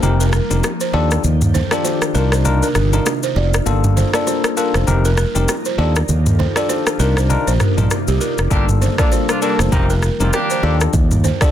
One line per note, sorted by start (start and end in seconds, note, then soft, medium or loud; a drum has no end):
0.00 0.39 F1 loud
0.00 0.93 F3 medium
0.00 0.92 A#3 medium
0.00 0.24 C4 medium
0.00 0.93 D#4 medium
0.00 0.24 D#4 medium
0.00 0.25 G4 medium
0.00 0.25 A#4 loud
0.00 low conga medium
0.00 shaker medium
0.20 0.29 A#4 medium
0.20 shaker medium
0.33 0.45 A#4 medium
0.33 cross-stick medium
0.33 shaker soft
0.50 0.60 F1 medium
0.50 0.69 C4 medium
0.50 0.69 D#4 medium
0.50 0.69 G4 medium
0.50 0.69 A#4 medium
0.50 low bongo medium
0.50 shaker medium
0.63 cross-stick loud
0.63 high bongo medium
0.63 shaker medium
0.80 0.90 C5 medium
0.80 shaker medium
0.93 1.17 D#2 loud
0.93 2.13 D#3 medium
0.93 1.22 D4 medium
0.93 3.64 D4 medium
0.93 1.22 F4 medium
0.93 4.84 F4 medium
0.93 2.14 G4 medium
0.93 1.22 G4 medium
0.93 2.14 A4 medium
0.93 1.22 A4 loud
0.93 1.06 D5 medium
0.93 high bongo medium
1.11 cross-stick loud
1.11 shaker medium
1.24 1.60 D#2 loud
1.24 low conga medium
1.24 shaker medium
1.41 mid tom medium
1.41 low bongo medium
1.41 shaker medium
1.54 1.66 C5 medium
1.54 low bongo medium
1.54 low conga medium
1.54 shaker medium
1.71 2.12 D4 medium
1.71 2.12 F4 medium
1.71 2.12 G4 medium
1.71 2.12 A4 medium
1.71 1.81 D5 medium
1.71 cross-stick loud
1.71 shaker medium
1.84 1.97 C5 medium
1.84 high bongo medium
1.84 shaker medium
2.02 cross-stick loud
2.02 shaker medium
2.14 2.61 C2 medium
2.14 3.65 C3 medium
2.14 3.65 A#3 medium
2.14 2.43 D4 medium
2.14 2.43 D#4 medium
2.14 3.65 D#4 medium
2.14 2.43 F4 medium
2.14 2.27 A#4 medium
2.14 2.43 A#4 medium
2.14 shaker medium
2.32 2.41 C5 medium
2.32 cross-stick loud
2.32 shaker medium
2.45 2.67 D4 medium
2.45 2.67 D#4 medium
2.45 2.67 F4 medium
2.45 2.67 A#4 loud
2.45 low conga medium
2.45 shaker medium
2.63 2.71 A#4 medium
2.63 shaker medium
2.75 2.98 G1 medium
2.75 2.88 A#4 medium
2.75 cross-stick medium
2.75 shaker soft
2.93 3.11 D4 medium
2.93 3.12 D#4 medium
2.93 3.12 F4 medium
2.93 3.12 A#4 medium
2.93 low bongo medium
2.93 shaker medium
3.06 cross-stick loud
3.06 high bongo medium
3.06 shaker medium
3.23 3.32 C5 medium
3.23 shaker medium
3.36 3.59 F1 medium
3.36 3.48 D5 medium
3.36 high bongo medium
3.54 cross-stick loud
3.54 shaker medium
3.66 4.02 G1 loud
3.66 4.86 G3 medium
3.66 4.10 A#3 medium
3.66 4.86 A#3 medium
3.66 4.10 D4 medium
3.66 4.10 F4 medium
3.66 4.10 A4 loud
3.66 low conga medium
3.66 shaker medium
3.84 mid tom medium
3.84 low bongo medium
3.84 shaker medium
3.97 4.09 C5 medium
3.97 low bongo medium
3.97 low conga medium
3.97 shaker medium
4.13 4.54 A#3 medium
4.13 4.54 D4 medium
4.13 4.54 F4 medium
4.13 4.54 A4 medium
4.13 4.23 D5 medium
4.13 cross-stick loud
4.13 shaker medium
4.27 4.39 C5 medium
4.27 high bongo medium
4.27 shaker medium
4.44 cross-stick loud
4.44 shaker medium
4.57 4.85 A#3 medium
4.57 4.85 D4 medium
4.57 4.85 F4 medium
4.57 4.86 A4 medium
4.57 4.69 A#4 medium
4.57 shaker medium
4.74 4.84 F1 medium
4.74 4.84 C5 medium
4.74 cross-stick loud
4.74 shaker medium
4.87 5.24 F1 loud
4.87 5.78 F3 medium
4.87 5.09 C4 medium
4.87 5.09 D#4 medium
4.87 5.78 D#4 medium
4.87 5.09 G4 medium
4.87 5.09 A#4 loud
4.87 5.78 A#4 medium
4.87 low conga medium
4.87 shaker medium
5.05 5.14 A#4 medium
5.05 shaker medium
5.17 5.30 A#4 medium
5.17 cross-stick medium
5.17 shaker soft
5.35 5.45 F1 loud
5.35 5.54 C4 medium
5.35 5.54 D#4 medium
5.35 5.54 G4 medium
5.35 5.54 A#4 medium
5.35 low bongo medium
5.35 shaker medium
5.48 cross-stick medium
5.48 high bongo medium
5.48 shaker medium
5.65 5.74 C5 medium
5.65 shaker medium
5.78 6.01 D#2 loud
5.78 6.98 D#3 medium
5.78 6.00 D4 medium
5.78 8.48 D4 medium
5.78 6.00 F4 medium
5.78 6.98 F4 medium
5.78 6.00 G4 medium
5.78 6.98 G4 medium
5.78 6.98 A4 medium
5.78 6.00 A4 medium
5.78 5.90 D5 medium
5.78 high bongo medium
5.96 cross-stick loud
5.96 shaker medium
6.09 6.45 D#2 loud
6.09 low conga medium
6.09 shaker medium
6.26 mid tom medium
6.26 low bongo medium
6.26 shaker medium
6.39 6.51 C5 medium
6.39 low bongo medium
6.39 low conga medium
6.56 6.96 D4 medium
6.56 6.96 F4 medium
6.56 6.97 G4 medium
6.56 6.97 A4 medium
6.56 6.69 D5 medium
6.56 cross-stick loud
6.56 shaker medium
6.69 6.81 C5 medium
6.69 high bongo medium
6.69 shaker medium
6.87 cross-stick loud
6.87 shaker medium
6.99 7.36 C2 medium
6.99 8.50 C3 medium
6.99 8.50 A#3 medium
6.99 7.28 D4 medium
6.99 7.28 D#4 medium
6.99 8.50 D#4 medium
6.99 7.28 F4 medium
6.99 9.70 F4 medium
6.99 7.12 A#4 medium
6.99 7.28 A#4 medium
6.99 shaker medium
7.17 7.26 C5 medium
7.17 cross-stick loud
7.17 shaker medium
7.30 7.52 D4 medium
7.30 7.52 D#4 medium
7.30 7.52 F4 medium
7.30 7.52 A#4 loud
7.30 low conga medium
7.30 shaker medium
7.47 7.57 A#1 medium
7.47 7.56 C5 medium
7.47 shaker medium
7.60 7.72 A#4 medium
7.60 cross-stick medium
7.60 mid tom medium
7.60 shaker soft
7.77 7.87 A#1 medium
7.77 7.96 D4 medium
7.77 7.96 D#4 medium
7.77 7.97 F4 medium
7.77 7.97 A#4 medium
7.77 mid tom medium
7.77 low bongo medium
7.77 shaker medium
7.91 cross-stick medium
7.91 high bongo medium
7.91 shaker medium
8.08 8.18 C2 medium
8.08 8.17 G4 medium
8.08 high bongo soft
8.08 shaker medium
8.21 8.33 A#4 medium
8.21 high bongo medium
8.21 shaker medium
8.38 8.48 F1 medium
8.38 cross-stick loud
8.38 shaker medium
8.51 8.87 G1 loud
8.51 8.65 G3 loud
8.51 9.71 G3 medium
8.51 8.65 A#3 loud
8.51 8.95 A#3 medium
8.51 9.71 A#3 medium
8.51 8.65 D4 loud
8.51 8.95 D4 medium
8.51 8.95 F4 medium
8.51 8.65 G4 loud
8.51 8.95 A4 loud
8.51 kick loud
8.51 low conga medium
8.51 shaker medium
8.69 mid tom medium
8.69 low bongo medium
8.69 shaker medium
8.82 8.94 C5 medium
8.82 low bongo medium
8.82 low conga medium
8.82 shaker medium
8.98 9.09 F3 medium
8.98 9.39 A#3 medium
8.98 9.09 A#3 medium
8.98 9.09 D4 medium
8.98 9.39 D4 medium
8.98 9.09 F4 medium
8.98 9.39 F4 medium
8.98 9.39 A4 medium
8.98 9.08 D5 medium
8.98 kick medium
8.98 cross-stick loud
8.98 shaker medium
9.12 9.24 C5 medium
9.12 high bongo medium
9.12 shaker medium
9.29 9.39 F3 medium
9.29 9.39 A#3 medium
9.29 9.39 D4 medium
9.29 9.39 F4 medium
9.29 cross-stick loud
9.29 shaker medium
9.42 9.56 D3 medium
9.42 9.56 G3 medium
9.42 9.70 A#3 medium
9.42 9.56 A#3 medium
9.42 9.56 D4 medium
9.42 9.70 D4 medium
9.42 9.70 F4 medium
9.42 9.70 A4 medium
9.42 9.54 A#4 medium
9.42 shaker medium
9.59 9.69 F1 medium
9.59 9.69 C5 medium
9.59 cross-stick loud
9.59 shaker medium
9.72 10.08 F1 loud
9.72 10.62 D#3 medium
9.72 9.86 D#3 medium
9.72 10.62 F3 medium
9.72 9.86 A#3 medium
9.72 9.94 C4 medium
9.72 9.86 C4 medium
9.72 9.94 D#4 medium
9.72 9.86 D#4 medium
9.72 9.94 G4 medium
9.72 10.62 A#4 medium
9.72 9.94 A#4 loud
9.72 kick medium
9.72 low conga medium
9.72 shaker medium
9.90 9.99 A#4 medium
9.90 shaker medium
10.02 10.15 A#4 medium
10.02 cross-stick medium
10.02 shaker soft
10.20 10.30 F1 medium
10.20 10.30 F3 medium
10.20 10.30 A#3 medium
10.20 10.39 C4 medium
10.20 10.30 C4 medium
10.20 10.39 D#4 medium
10.20 10.30 F4 medium
10.20 10.39 G4 medium
10.20 10.39 A#4 medium
10.20 low bongo medium
10.20 shaker medium
10.33 10.78 G3 medium
10.33 10.78 A#3 medium
10.33 10.78 D4 medium
10.33 10.78 G4 loud
10.33 cross-stick medium
10.33 high bongo medium
10.33 shaker medium
10.50 10.59 C5 medium
10.50 shaker medium
10.63 10.86 D#2 loud
10.63 11.51 D#3 medium
10.63 10.91 D4 medium
10.63 11.51 D4 medium
10.63 10.91 F4 medium
10.63 11.51 F4 medium
10.63 10.92 G4 medium
10.63 11.51 G4 medium
10.63 11.51 A4 medium
10.63 10.92 A4 loud
10.63 10.75 D5 medium
10.63 high bongo medium
10.81 cross-stick loud
10.81 shaker medium
10.93 11.30 D#2 loud
10.93 kick loud
10.93 low conga medium
10.93 shaker medium
11.11 mid tom medium
11.11 low bongo medium
11.11 shaker medium
11.24 11.36 C5 medium
11.24 low bongo medium
11.24 low conga medium
11.24 shaker medium
11.41 11.51 D4 medium
11.41 11.51 F4 medium
11.41 11.51 G4 medium
11.41 11.51 A4 medium
11.41 11.51 D5 medium
11.41 kick medium
11.41 cross-stick loud
11.41 shaker medium